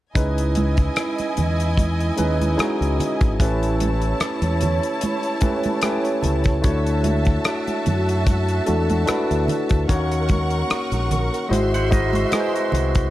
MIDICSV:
0, 0, Header, 1, 7, 480
1, 0, Start_track
1, 0, Tempo, 811798
1, 88, Time_signature, 4, 2, 24, 8
1, 7746, End_track
2, 0, Start_track
2, 0, Title_t, "String section"
2, 0, Program_c, 0, 48
2, 92, Note_on_c, 0, 80, 70
2, 93, Note_on_c, 0, 75, 66
2, 94, Note_on_c, 0, 64, 67
2, 1986, Note_off_c, 0, 80, 0
2, 1987, Note_off_c, 0, 75, 0
2, 1988, Note_off_c, 0, 64, 0
2, 2004, Note_on_c, 0, 64, 68
2, 2008, Note_on_c, 0, 73, 67
2, 2008, Note_on_c, 0, 81, 74
2, 3903, Note_off_c, 0, 64, 0
2, 3904, Note_off_c, 0, 73, 0
2, 3905, Note_off_c, 0, 81, 0
2, 3927, Note_on_c, 0, 66, 68
2, 3930, Note_on_c, 0, 76, 70
2, 3931, Note_on_c, 0, 81, 75
2, 5825, Note_off_c, 0, 66, 0
2, 5826, Note_off_c, 0, 76, 0
2, 5826, Note_off_c, 0, 81, 0
2, 5841, Note_on_c, 0, 70, 67
2, 5842, Note_on_c, 0, 78, 70
2, 5843, Note_on_c, 0, 85, 76
2, 6786, Note_off_c, 0, 70, 0
2, 6786, Note_off_c, 0, 78, 0
2, 6787, Note_off_c, 0, 85, 0
2, 6809, Note_on_c, 0, 66, 69
2, 6810, Note_on_c, 0, 84, 73
2, 6812, Note_on_c, 0, 76, 73
2, 7746, Note_off_c, 0, 66, 0
2, 7746, Note_off_c, 0, 76, 0
2, 7746, Note_off_c, 0, 84, 0
2, 7746, End_track
3, 0, Start_track
3, 0, Title_t, "Clean electric guitar"
3, 0, Program_c, 1, 27
3, 6943, Note_on_c, 1, 78, 58
3, 6949, Note_on_c, 1, 72, 54
3, 7046, Note_off_c, 1, 78, 0
3, 7049, Note_off_c, 1, 72, 0
3, 7053, Note_on_c, 1, 75, 58
3, 7059, Note_on_c, 1, 70, 44
3, 7174, Note_off_c, 1, 75, 0
3, 7177, Note_off_c, 1, 70, 0
3, 7185, Note_on_c, 1, 66, 58
3, 7185, Note_on_c, 1, 72, 63
3, 7286, Note_off_c, 1, 72, 0
3, 7287, Note_off_c, 1, 66, 0
3, 7291, Note_on_c, 1, 68, 64
3, 7295, Note_on_c, 1, 63, 51
3, 7413, Note_off_c, 1, 68, 0
3, 7415, Note_off_c, 1, 63, 0
3, 7421, Note_on_c, 1, 66, 61
3, 7424, Note_on_c, 1, 60, 48
3, 7746, Note_off_c, 1, 60, 0
3, 7746, Note_off_c, 1, 66, 0
3, 7746, End_track
4, 0, Start_track
4, 0, Title_t, "Tine electric piano"
4, 0, Program_c, 2, 4
4, 88, Note_on_c, 2, 56, 74
4, 92, Note_on_c, 2, 61, 65
4, 92, Note_on_c, 2, 63, 67
4, 96, Note_on_c, 2, 64, 64
4, 99, Note_on_c, 2, 71, 77
4, 193, Control_c, 2, 64, 127
4, 866, Note_off_c, 2, 56, 0
4, 868, Note_off_c, 2, 61, 0
4, 869, Note_off_c, 2, 63, 0
4, 870, Note_off_c, 2, 64, 0
4, 872, Note_off_c, 2, 71, 0
4, 1280, Note_on_c, 2, 56, 69
4, 1285, Note_on_c, 2, 61, 62
4, 1287, Note_on_c, 2, 63, 57
4, 1293, Note_on_c, 2, 64, 59
4, 1293, Note_on_c, 2, 71, 72
4, 1481, Note_off_c, 2, 56, 0
4, 1484, Note_off_c, 2, 61, 0
4, 1484, Note_off_c, 2, 63, 0
4, 1487, Note_off_c, 2, 64, 0
4, 1488, Note_off_c, 2, 71, 0
4, 1520, Note_on_c, 2, 56, 72
4, 1524, Note_on_c, 2, 61, 59
4, 1526, Note_on_c, 2, 63, 70
4, 1530, Note_on_c, 2, 64, 60
4, 1536, Note_on_c, 2, 66, 77
4, 1919, Note_off_c, 2, 56, 0
4, 1920, Note_off_c, 2, 61, 0
4, 1921, Note_off_c, 2, 63, 0
4, 1923, Note_off_c, 2, 64, 0
4, 1926, Note_off_c, 2, 66, 0
4, 2009, Note_on_c, 2, 57, 75
4, 2012, Note_on_c, 2, 61, 65
4, 2012, Note_on_c, 2, 64, 65
4, 2016, Note_on_c, 2, 67, 65
4, 2017, Control_c, 2, 64, 0
4, 2019, Note_on_c, 2, 71, 75
4, 2114, Control_c, 2, 64, 127
4, 2787, Note_off_c, 2, 57, 0
4, 2788, Note_off_c, 2, 61, 0
4, 2788, Note_off_c, 2, 64, 0
4, 2791, Note_off_c, 2, 67, 0
4, 2792, Note_off_c, 2, 71, 0
4, 3201, Note_on_c, 2, 61, 65
4, 3202, Note_on_c, 2, 57, 67
4, 3204, Note_on_c, 2, 64, 65
4, 3209, Note_on_c, 2, 67, 59
4, 3209, Note_on_c, 2, 71, 67
4, 3402, Note_off_c, 2, 57, 0
4, 3402, Note_off_c, 2, 61, 0
4, 3403, Note_off_c, 2, 64, 0
4, 3406, Note_off_c, 2, 67, 0
4, 3406, Note_off_c, 2, 71, 0
4, 3440, Note_on_c, 2, 57, 70
4, 3446, Note_on_c, 2, 61, 63
4, 3446, Note_on_c, 2, 64, 64
4, 3449, Note_on_c, 2, 67, 62
4, 3452, Note_on_c, 2, 71, 64
4, 3492, Note_off_c, 2, 71, 0
4, 3494, Note_on_c, 2, 73, 69
4, 3839, Note_off_c, 2, 57, 0
4, 3841, Note_off_c, 2, 61, 0
4, 3842, Note_off_c, 2, 64, 0
4, 3843, Note_off_c, 2, 67, 0
4, 3866, Note_off_c, 2, 73, 0
4, 3914, Note_on_c, 2, 57, 75
4, 3917, Note_on_c, 2, 62, 66
4, 3920, Note_on_c, 2, 64, 69
4, 3925, Note_on_c, 2, 66, 62
4, 3926, Note_on_c, 2, 73, 81
4, 3935, Control_c, 2, 64, 0
4, 4035, Control_c, 2, 64, 127
4, 4700, Note_off_c, 2, 57, 0
4, 4701, Note_off_c, 2, 62, 0
4, 4703, Note_off_c, 2, 64, 0
4, 4705, Note_off_c, 2, 66, 0
4, 4706, Note_off_c, 2, 73, 0
4, 5121, Note_on_c, 2, 57, 68
4, 5122, Note_on_c, 2, 62, 65
4, 5125, Note_on_c, 2, 64, 60
4, 5129, Note_on_c, 2, 69, 77
4, 5130, Note_on_c, 2, 66, 61
4, 5322, Note_off_c, 2, 57, 0
4, 5323, Note_off_c, 2, 62, 0
4, 5324, Note_off_c, 2, 64, 0
4, 5326, Note_off_c, 2, 66, 0
4, 5326, Note_off_c, 2, 69, 0
4, 5356, Note_on_c, 2, 62, 67
4, 5357, Note_on_c, 2, 57, 66
4, 5363, Note_on_c, 2, 64, 65
4, 5368, Note_on_c, 2, 66, 68
4, 5369, Note_on_c, 2, 71, 81
4, 5757, Note_off_c, 2, 62, 0
4, 5758, Note_off_c, 2, 57, 0
4, 5760, Note_off_c, 2, 64, 0
4, 5763, Note_off_c, 2, 66, 0
4, 5764, Note_off_c, 2, 71, 0
4, 5840, Note_on_c, 2, 58, 70
4, 5845, Note_on_c, 2, 61, 64
4, 5846, Note_on_c, 2, 63, 64
4, 5849, Note_on_c, 2, 66, 72
4, 5851, Note_on_c, 2, 73, 87
4, 5857, Control_c, 2, 64, 0
4, 5950, Control_c, 2, 64, 127
4, 6623, Note_off_c, 2, 58, 0
4, 6626, Note_off_c, 2, 61, 0
4, 6626, Note_off_c, 2, 63, 0
4, 6628, Note_off_c, 2, 66, 0
4, 6629, Note_off_c, 2, 73, 0
4, 6792, Note_on_c, 2, 56, 74
4, 6794, Note_on_c, 2, 75, 67
4, 6798, Note_on_c, 2, 64, 71
4, 6801, Note_on_c, 2, 66, 71
4, 6806, Note_on_c, 2, 72, 78
4, 6817, Control_c, 2, 64, 0
4, 6914, Control_c, 2, 64, 127
4, 6998, Note_off_c, 2, 56, 0
4, 6999, Note_off_c, 2, 75, 0
4, 7001, Note_off_c, 2, 64, 0
4, 7002, Note_off_c, 2, 66, 0
4, 7005, Note_off_c, 2, 72, 0
4, 7033, Note_on_c, 2, 56, 66
4, 7038, Note_on_c, 2, 75, 58
4, 7040, Note_on_c, 2, 64, 66
4, 7041, Note_on_c, 2, 66, 63
4, 7048, Note_on_c, 2, 72, 72
4, 7238, Note_off_c, 2, 56, 0
4, 7241, Note_off_c, 2, 75, 0
4, 7242, Note_off_c, 2, 64, 0
4, 7242, Note_off_c, 2, 66, 0
4, 7246, Note_off_c, 2, 72, 0
4, 7278, Note_on_c, 2, 56, 71
4, 7284, Note_on_c, 2, 64, 59
4, 7284, Note_on_c, 2, 75, 62
4, 7288, Note_on_c, 2, 66, 62
4, 7293, Note_on_c, 2, 71, 62
4, 7331, Note_on_c, 2, 72, 79
4, 7333, Note_off_c, 2, 71, 0
4, 7678, Note_off_c, 2, 56, 0
4, 7681, Note_off_c, 2, 64, 0
4, 7681, Note_off_c, 2, 75, 0
4, 7683, Note_off_c, 2, 66, 0
4, 7705, Note_off_c, 2, 72, 0
4, 7746, End_track
5, 0, Start_track
5, 0, Title_t, "Fingered electric bass"
5, 0, Program_c, 3, 33
5, 93, Note_on_c, 3, 37, 82
5, 521, Note_off_c, 3, 37, 0
5, 816, Note_on_c, 3, 40, 77
5, 1242, Note_off_c, 3, 40, 0
5, 1295, Note_on_c, 3, 39, 73
5, 1507, Note_off_c, 3, 39, 0
5, 1660, Note_on_c, 3, 37, 74
5, 1758, Note_off_c, 3, 37, 0
5, 1901, Note_on_c, 3, 32, 74
5, 1998, Note_off_c, 3, 32, 0
5, 2010, Note_on_c, 3, 33, 88
5, 2440, Note_off_c, 3, 33, 0
5, 2612, Note_on_c, 3, 40, 83
5, 2830, Note_off_c, 3, 40, 0
5, 3693, Note_on_c, 3, 37, 80
5, 3906, Note_off_c, 3, 37, 0
5, 3928, Note_on_c, 3, 38, 85
5, 4358, Note_off_c, 3, 38, 0
5, 4653, Note_on_c, 3, 42, 73
5, 5081, Note_off_c, 3, 42, 0
5, 5135, Note_on_c, 3, 40, 75
5, 5348, Note_off_c, 3, 40, 0
5, 5504, Note_on_c, 3, 38, 72
5, 5600, Note_off_c, 3, 38, 0
5, 5742, Note_on_c, 3, 38, 70
5, 5839, Note_off_c, 3, 38, 0
5, 5852, Note_on_c, 3, 39, 84
5, 6281, Note_off_c, 3, 39, 0
5, 6456, Note_on_c, 3, 34, 83
5, 6672, Note_off_c, 3, 34, 0
5, 6805, Note_on_c, 3, 32, 93
5, 7237, Note_off_c, 3, 32, 0
5, 7528, Note_on_c, 3, 36, 77
5, 7744, Note_off_c, 3, 36, 0
5, 7746, End_track
6, 0, Start_track
6, 0, Title_t, "Muted fingered electric bass strokes"
6, 1532, Note_on_c, 9, 29, 37
6, 1591, Note_off_c, 9, 29, 0
6, 2486, Note_on_c, 9, 29, 42
6, 2545, Note_off_c, 9, 29, 0
6, 5376, Note_on_c, 9, 29, 39
6, 5435, Note_off_c, 9, 29, 0
6, 6331, Note_on_c, 9, 29, 39
6, 6390, Note_off_c, 9, 29, 0
6, 7746, End_track
7, 0, Start_track
7, 0, Title_t, "Drums"
7, 91, Note_on_c, 9, 36, 98
7, 93, Note_on_c, 9, 42, 81
7, 150, Note_off_c, 9, 36, 0
7, 152, Note_off_c, 9, 42, 0
7, 225, Note_on_c, 9, 42, 54
7, 284, Note_off_c, 9, 42, 0
7, 326, Note_on_c, 9, 42, 73
7, 339, Note_on_c, 9, 62, 30
7, 339, Note_on_c, 9, 63, 68
7, 385, Note_off_c, 9, 42, 0
7, 398, Note_off_c, 9, 62, 0
7, 398, Note_off_c, 9, 63, 0
7, 456, Note_on_c, 9, 42, 44
7, 460, Note_on_c, 9, 36, 70
7, 515, Note_off_c, 9, 42, 0
7, 519, Note_off_c, 9, 36, 0
7, 569, Note_on_c, 9, 42, 71
7, 572, Note_on_c, 9, 37, 97
7, 581, Note_on_c, 9, 62, 30
7, 628, Note_off_c, 9, 42, 0
7, 632, Note_off_c, 9, 37, 0
7, 641, Note_off_c, 9, 62, 0
7, 700, Note_on_c, 9, 42, 41
7, 708, Note_on_c, 9, 63, 41
7, 759, Note_off_c, 9, 42, 0
7, 767, Note_off_c, 9, 63, 0
7, 809, Note_on_c, 9, 42, 60
7, 815, Note_on_c, 9, 64, 62
7, 868, Note_off_c, 9, 42, 0
7, 874, Note_off_c, 9, 64, 0
7, 945, Note_on_c, 9, 42, 45
7, 1004, Note_off_c, 9, 42, 0
7, 1049, Note_on_c, 9, 36, 78
7, 1056, Note_on_c, 9, 42, 77
7, 1057, Note_on_c, 9, 62, 27
7, 1057, Note_on_c, 9, 63, 55
7, 1108, Note_off_c, 9, 36, 0
7, 1115, Note_off_c, 9, 42, 0
7, 1116, Note_off_c, 9, 62, 0
7, 1116, Note_off_c, 9, 63, 0
7, 1185, Note_on_c, 9, 42, 43
7, 1245, Note_off_c, 9, 42, 0
7, 1286, Note_on_c, 9, 42, 69
7, 1295, Note_on_c, 9, 62, 32
7, 1295, Note_on_c, 9, 63, 70
7, 1345, Note_off_c, 9, 42, 0
7, 1354, Note_off_c, 9, 62, 0
7, 1354, Note_off_c, 9, 63, 0
7, 1428, Note_on_c, 9, 42, 44
7, 1428, Note_on_c, 9, 63, 68
7, 1487, Note_off_c, 9, 42, 0
7, 1487, Note_off_c, 9, 63, 0
7, 1531, Note_on_c, 9, 42, 76
7, 1534, Note_on_c, 9, 63, 62
7, 1538, Note_on_c, 9, 37, 94
7, 1591, Note_off_c, 9, 42, 0
7, 1593, Note_off_c, 9, 63, 0
7, 1597, Note_off_c, 9, 37, 0
7, 1668, Note_on_c, 9, 42, 45
7, 1727, Note_off_c, 9, 42, 0
7, 1773, Note_on_c, 9, 62, 23
7, 1773, Note_on_c, 9, 64, 47
7, 1776, Note_on_c, 9, 42, 74
7, 1832, Note_off_c, 9, 62, 0
7, 1832, Note_off_c, 9, 64, 0
7, 1835, Note_off_c, 9, 42, 0
7, 1897, Note_on_c, 9, 42, 47
7, 1899, Note_on_c, 9, 36, 87
7, 1956, Note_off_c, 9, 42, 0
7, 1958, Note_off_c, 9, 36, 0
7, 2009, Note_on_c, 9, 36, 94
7, 2013, Note_on_c, 9, 42, 82
7, 2018, Note_on_c, 9, 62, 31
7, 2068, Note_off_c, 9, 36, 0
7, 2072, Note_off_c, 9, 42, 0
7, 2077, Note_off_c, 9, 62, 0
7, 2145, Note_on_c, 9, 42, 50
7, 2204, Note_off_c, 9, 42, 0
7, 2249, Note_on_c, 9, 42, 77
7, 2257, Note_on_c, 9, 63, 65
7, 2308, Note_off_c, 9, 42, 0
7, 2316, Note_off_c, 9, 63, 0
7, 2375, Note_on_c, 9, 42, 42
7, 2434, Note_off_c, 9, 42, 0
7, 2485, Note_on_c, 9, 42, 67
7, 2489, Note_on_c, 9, 37, 93
7, 2544, Note_off_c, 9, 42, 0
7, 2548, Note_off_c, 9, 37, 0
7, 2613, Note_on_c, 9, 42, 45
7, 2625, Note_on_c, 9, 63, 43
7, 2672, Note_off_c, 9, 42, 0
7, 2684, Note_off_c, 9, 63, 0
7, 2724, Note_on_c, 9, 42, 65
7, 2736, Note_on_c, 9, 62, 28
7, 2736, Note_on_c, 9, 64, 61
7, 2783, Note_off_c, 9, 42, 0
7, 2796, Note_off_c, 9, 62, 0
7, 2796, Note_off_c, 9, 64, 0
7, 2858, Note_on_c, 9, 42, 45
7, 2917, Note_off_c, 9, 42, 0
7, 2963, Note_on_c, 9, 42, 80
7, 2977, Note_on_c, 9, 62, 26
7, 2977, Note_on_c, 9, 63, 59
7, 3023, Note_off_c, 9, 42, 0
7, 3037, Note_off_c, 9, 62, 0
7, 3037, Note_off_c, 9, 63, 0
7, 3093, Note_on_c, 9, 42, 39
7, 3152, Note_off_c, 9, 42, 0
7, 3197, Note_on_c, 9, 42, 66
7, 3204, Note_on_c, 9, 36, 73
7, 3213, Note_on_c, 9, 62, 30
7, 3213, Note_on_c, 9, 63, 66
7, 3256, Note_off_c, 9, 42, 0
7, 3263, Note_off_c, 9, 36, 0
7, 3272, Note_off_c, 9, 62, 0
7, 3272, Note_off_c, 9, 63, 0
7, 3332, Note_on_c, 9, 42, 42
7, 3345, Note_on_c, 9, 63, 71
7, 3391, Note_off_c, 9, 42, 0
7, 3404, Note_off_c, 9, 63, 0
7, 3438, Note_on_c, 9, 42, 87
7, 3445, Note_on_c, 9, 37, 96
7, 3447, Note_on_c, 9, 63, 59
7, 3498, Note_off_c, 9, 42, 0
7, 3505, Note_off_c, 9, 37, 0
7, 3506, Note_off_c, 9, 63, 0
7, 3575, Note_on_c, 9, 42, 47
7, 3635, Note_off_c, 9, 42, 0
7, 3681, Note_on_c, 9, 62, 25
7, 3681, Note_on_c, 9, 64, 54
7, 3687, Note_on_c, 9, 42, 74
7, 3740, Note_off_c, 9, 62, 0
7, 3740, Note_off_c, 9, 64, 0
7, 3746, Note_off_c, 9, 42, 0
7, 3807, Note_on_c, 9, 42, 48
7, 3818, Note_on_c, 9, 36, 79
7, 3866, Note_off_c, 9, 42, 0
7, 3877, Note_off_c, 9, 36, 0
7, 3925, Note_on_c, 9, 42, 91
7, 3927, Note_on_c, 9, 36, 105
7, 3927, Note_on_c, 9, 62, 28
7, 3984, Note_off_c, 9, 42, 0
7, 3986, Note_off_c, 9, 36, 0
7, 3986, Note_off_c, 9, 62, 0
7, 4059, Note_on_c, 9, 42, 49
7, 4118, Note_off_c, 9, 42, 0
7, 4163, Note_on_c, 9, 42, 74
7, 4165, Note_on_c, 9, 62, 27
7, 4165, Note_on_c, 9, 63, 63
7, 4222, Note_off_c, 9, 42, 0
7, 4224, Note_off_c, 9, 62, 0
7, 4224, Note_off_c, 9, 63, 0
7, 4287, Note_on_c, 9, 42, 41
7, 4297, Note_on_c, 9, 36, 64
7, 4346, Note_off_c, 9, 42, 0
7, 4356, Note_off_c, 9, 36, 0
7, 4402, Note_on_c, 9, 42, 68
7, 4406, Note_on_c, 9, 37, 104
7, 4461, Note_off_c, 9, 42, 0
7, 4465, Note_off_c, 9, 37, 0
7, 4538, Note_on_c, 9, 42, 41
7, 4540, Note_on_c, 9, 63, 41
7, 4597, Note_off_c, 9, 42, 0
7, 4599, Note_off_c, 9, 63, 0
7, 4647, Note_on_c, 9, 42, 66
7, 4652, Note_on_c, 9, 62, 30
7, 4652, Note_on_c, 9, 64, 64
7, 4706, Note_off_c, 9, 42, 0
7, 4711, Note_off_c, 9, 62, 0
7, 4711, Note_off_c, 9, 64, 0
7, 4782, Note_on_c, 9, 42, 47
7, 4841, Note_off_c, 9, 42, 0
7, 4887, Note_on_c, 9, 42, 75
7, 4888, Note_on_c, 9, 36, 74
7, 4898, Note_on_c, 9, 63, 55
7, 4946, Note_off_c, 9, 42, 0
7, 4947, Note_off_c, 9, 36, 0
7, 4957, Note_off_c, 9, 63, 0
7, 5017, Note_on_c, 9, 42, 42
7, 5076, Note_off_c, 9, 42, 0
7, 5123, Note_on_c, 9, 42, 61
7, 5135, Note_on_c, 9, 62, 29
7, 5135, Note_on_c, 9, 63, 66
7, 5182, Note_off_c, 9, 42, 0
7, 5194, Note_off_c, 9, 62, 0
7, 5194, Note_off_c, 9, 63, 0
7, 5260, Note_on_c, 9, 42, 41
7, 5264, Note_on_c, 9, 63, 71
7, 5319, Note_off_c, 9, 42, 0
7, 5323, Note_off_c, 9, 63, 0
7, 5365, Note_on_c, 9, 42, 84
7, 5372, Note_on_c, 9, 37, 100
7, 5377, Note_on_c, 9, 62, 26
7, 5377, Note_on_c, 9, 63, 55
7, 5424, Note_off_c, 9, 42, 0
7, 5431, Note_off_c, 9, 37, 0
7, 5436, Note_off_c, 9, 62, 0
7, 5436, Note_off_c, 9, 63, 0
7, 5504, Note_on_c, 9, 42, 42
7, 5563, Note_off_c, 9, 42, 0
7, 5606, Note_on_c, 9, 64, 53
7, 5613, Note_on_c, 9, 42, 70
7, 5665, Note_off_c, 9, 64, 0
7, 5673, Note_off_c, 9, 42, 0
7, 5732, Note_on_c, 9, 42, 49
7, 5740, Note_on_c, 9, 36, 78
7, 5791, Note_off_c, 9, 42, 0
7, 5799, Note_off_c, 9, 36, 0
7, 5849, Note_on_c, 9, 36, 98
7, 5849, Note_on_c, 9, 42, 90
7, 5851, Note_on_c, 9, 62, 28
7, 5908, Note_off_c, 9, 36, 0
7, 5908, Note_off_c, 9, 42, 0
7, 5910, Note_off_c, 9, 62, 0
7, 5981, Note_on_c, 9, 42, 54
7, 6040, Note_off_c, 9, 42, 0
7, 6082, Note_on_c, 9, 42, 76
7, 6088, Note_on_c, 9, 36, 81
7, 6093, Note_on_c, 9, 62, 29
7, 6093, Note_on_c, 9, 63, 63
7, 6141, Note_off_c, 9, 42, 0
7, 6147, Note_off_c, 9, 36, 0
7, 6152, Note_off_c, 9, 62, 0
7, 6152, Note_off_c, 9, 63, 0
7, 6211, Note_on_c, 9, 42, 39
7, 6270, Note_off_c, 9, 42, 0
7, 6328, Note_on_c, 9, 42, 70
7, 6329, Note_on_c, 9, 62, 30
7, 6332, Note_on_c, 9, 37, 98
7, 6387, Note_off_c, 9, 42, 0
7, 6388, Note_off_c, 9, 62, 0
7, 6391, Note_off_c, 9, 37, 0
7, 6455, Note_on_c, 9, 42, 43
7, 6457, Note_on_c, 9, 63, 40
7, 6514, Note_off_c, 9, 42, 0
7, 6516, Note_off_c, 9, 63, 0
7, 6569, Note_on_c, 9, 42, 64
7, 6572, Note_on_c, 9, 64, 62
7, 6628, Note_off_c, 9, 42, 0
7, 6631, Note_off_c, 9, 64, 0
7, 6705, Note_on_c, 9, 42, 47
7, 6764, Note_off_c, 9, 42, 0
7, 6814, Note_on_c, 9, 62, 27
7, 6814, Note_on_c, 9, 63, 60
7, 6816, Note_on_c, 9, 42, 73
7, 6873, Note_off_c, 9, 62, 0
7, 6873, Note_off_c, 9, 63, 0
7, 6875, Note_off_c, 9, 42, 0
7, 6943, Note_on_c, 9, 42, 47
7, 7002, Note_off_c, 9, 42, 0
7, 7045, Note_on_c, 9, 62, 29
7, 7045, Note_on_c, 9, 63, 62
7, 7049, Note_on_c, 9, 36, 74
7, 7050, Note_on_c, 9, 42, 68
7, 7104, Note_off_c, 9, 62, 0
7, 7104, Note_off_c, 9, 63, 0
7, 7108, Note_off_c, 9, 36, 0
7, 7109, Note_off_c, 9, 42, 0
7, 7174, Note_on_c, 9, 63, 69
7, 7185, Note_on_c, 9, 42, 42
7, 7233, Note_off_c, 9, 63, 0
7, 7244, Note_off_c, 9, 42, 0
7, 7284, Note_on_c, 9, 42, 80
7, 7287, Note_on_c, 9, 63, 59
7, 7291, Note_on_c, 9, 37, 90
7, 7343, Note_off_c, 9, 42, 0
7, 7346, Note_off_c, 9, 63, 0
7, 7350, Note_off_c, 9, 37, 0
7, 7424, Note_on_c, 9, 42, 45
7, 7483, Note_off_c, 9, 42, 0
7, 7521, Note_on_c, 9, 64, 52
7, 7537, Note_on_c, 9, 42, 72
7, 7581, Note_off_c, 9, 64, 0
7, 7596, Note_off_c, 9, 42, 0
7, 7656, Note_on_c, 9, 42, 46
7, 7660, Note_on_c, 9, 36, 83
7, 7715, Note_off_c, 9, 42, 0
7, 7719, Note_off_c, 9, 36, 0
7, 7746, End_track
0, 0, End_of_file